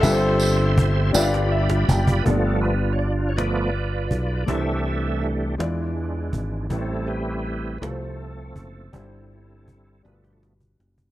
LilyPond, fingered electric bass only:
\new Staff \with { instrumentName = "Fingered electric bass" } { \clef bass \time 6/8 \key g \mixolydian \tempo 4. = 54 g,,4. g,,4 fis,,8 | g,,2~ g,,8 b,,8 | c,4. e,4 gis,,8 | a,,4. c,4 fis,,8 |
g,,4. g,,4 fis,,8 | }